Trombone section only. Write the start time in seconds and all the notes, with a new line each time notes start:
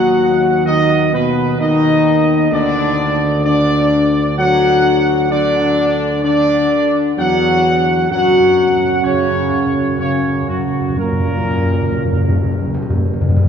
Already playing: F#3
0.65 D#3
1.13 B2
1.59 D#3
2.52 D3
3.45 D3
4.38 F#3
5.31 D3
6.24 D3
7.18 F#3
8.11 F#3
9.05 C#3
10.00 C#3
10.49 F#2
10.99 A#2